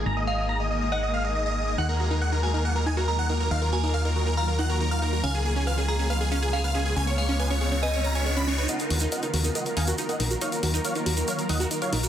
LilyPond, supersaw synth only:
\new Staff \with { instrumentName = "Supersaw synth" } { \time 4/4 \key ees \minor \tempo 4 = 139 bes''16 ees''16 ees''16 ees''16 bes''16 ees''16 ees''16 ees''16 ges''16 ees''16 f''16 ees''16 ees''16 ees''16 ees''16 ees''16 | ges''16 bes'16 bes'16 bes'16 ges''16 bes'16 bes'16 bes'16 ges''16 bes'16 aes''16 bes'16 bes'16 ges''16 bes'16 bes'16 | f''16 bes'16 bes'16 bes'16 f''16 bes'16 bes'16 bes'16 f''16 bes'16 ges''16 bes'16 bes'16 f''16 bes'16 bes'16 | f''16 aes'16 aes'16 aes'16 f''16 aes'16 aes'16 aes'16 f''16 aes'16 f''16 aes'16 aes'16 f''16 aes'16 aes'16 |
aes''16 des''16 des''16 des''16 aes''16 des''16 des''16 des''16 aes''16 des''16 bes''16 des''16 des''16 ces'''16 des''16 des''16 | <ees'' ges''>16 bes'16 bes'16 bes'16 <ees'' ges''>16 bes'16 bes'16 bes'16 <ees'' ges''>16 bes'16 <f'' aes''>16 bes'16 bes'16 <ees'' ges''>16 bes'16 bes'16 | <des'' f''>16 bes'16 bes'16 bes'16 <des'' f''>16 bes'16 bes'16 bes'16 <des'' f''>16 bes'16 <ees'' ges''>16 bes'16 bes'16 <des'' f''>16 bes'16 bes'16 | }